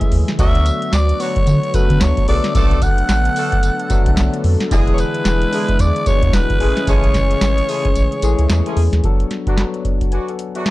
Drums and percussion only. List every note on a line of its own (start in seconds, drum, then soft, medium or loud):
0.01 kick medium
0.01 closed hi-hat medium
0.12 open hi-hat medium
0.28 snare medium
0.28 closed hi-hat soft
0.39 kick loud
0.39 closed hi-hat medium
0.39 tambourine medium
0.55 closed hi-hat soft
0.66 closed hi-hat medium
0.66 tambourine medium
0.82 closed hi-hat medium
0.93 snare loud
0.93 clap medium
0.93 closed hi-hat medium
0.93 tambourine loud
1.09 closed hi-hat soft
1.20 open hi-hat medium
1.20 tambourine medium
1.36 kick medium
1.36 closed hi-hat medium
1.47 closed hi-hat medium
1.47 tambourine medium
1.63 closed hi-hat medium
1.74 kick loud
1.74 closed hi-hat medium
1.74 tambourine medium
1.90 kick medium
1.90 closed hi-hat medium
2.01 snare loud
2.01 clap medium
2.01 closed hi-hat medium
2.01 tambourine loud
2.17 kick medium
2.17 closed hi-hat medium
2.28 open hi-hat medium
2.44 snare medium
2.44 closed hi-hat medium
2.55 kick loud
2.55 closed hi-hat medium
2.55 tambourine medium
2.71 closed hi-hat soft
2.82 kick loud
2.82 closed hi-hat medium
2.82 tambourine medium
2.98 closed hi-hat medium
3.09 snare loud
3.09 clap medium
3.09 closed hi-hat medium
3.09 tambourine loud
3.25 closed hi-hat medium
3.36 open hi-hat medium
3.36 tambourine medium
3.52 kick medium
3.52 closed hi-hat medium
3.63 closed hi-hat medium
3.63 tambourine medium
3.79 closed hi-hat soft
3.90 kick loud
3.90 closed hi-hat medium
3.90 tambourine medium
4.06 kick medium
4.06 closed hi-hat medium
4.17 snare loud
4.17 clap loud
4.17 closed hi-hat medium
4.17 tambourine loud
4.34 closed hi-hat medium
4.44 open hi-hat medium
4.60 snare medium
4.60 closed hi-hat medium
4.71 kick loud
4.71 closed hi-hat medium
4.71 tambourine medium
4.87 closed hi-hat soft
4.98 closed hi-hat medium
4.98 tambourine medium
5.14 closed hi-hat medium
5.25 snare loud
5.25 clap medium
5.25 closed hi-hat medium
5.25 tambourine loud
5.42 closed hi-hat medium
5.53 open hi-hat medium
5.53 tambourine medium
5.69 kick medium
5.69 closed hi-hat medium
5.79 closed hi-hat medium
5.79 tambourine medium
5.96 closed hi-hat soft
6.06 kick medium
6.06 closed hi-hat medium
6.06 tambourine medium
6.23 kick medium
6.23 closed hi-hat medium
6.33 snare loud
6.33 clap medium
6.33 closed hi-hat medium
6.33 tambourine medium
6.50 kick medium
6.50 closed hi-hat medium
6.60 open hi-hat medium
6.77 snare medium
6.77 closed hi-hat medium
6.87 kick loud
6.87 closed hi-hat medium
6.87 tambourine medium
7.04 closed hi-hat soft
7.14 kick medium
7.14 snare medium
7.14 closed hi-hat medium
7.14 tambourine medium
7.31 closed hi-hat medium
7.41 snare loud
7.41 clap medium
7.41 closed hi-hat medium
7.41 tambourine loud
7.58 closed hi-hat medium
7.69 open hi-hat medium
7.69 tambourine medium
7.85 kick medium
7.85 closed hi-hat soft
7.96 closed hi-hat medium
7.96 tambourine medium
8.12 closed hi-hat soft
8.22 closed hi-hat medium
8.22 tambourine medium
8.39 closed hi-hat medium
8.50 snare loud
8.50 clap loud
8.50 closed hi-hat medium
8.50 tambourine loud
8.66 closed hi-hat medium
8.77 open hi-hat medium
8.93 snare medium
8.93 closed hi-hat medium
9.04 kick loud
9.04 closed hi-hat medium
9.20 closed hi-hat soft
9.31 snare medium
9.31 closed hi-hat medium
9.47 kick medium
9.47 closed hi-hat soft
9.57 snare medium
9.57 clap medium
9.57 closed hi-hat medium
9.74 closed hi-hat soft
9.85 kick medium
9.85 closed hi-hat medium
10.01 kick medium
10.01 closed hi-hat medium
10.12 closed hi-hat medium
10.28 closed hi-hat soft
10.39 closed hi-hat medium
10.55 closed hi-hat medium
10.66 snare loud
10.66 clap medium
10.66 closed hi-hat medium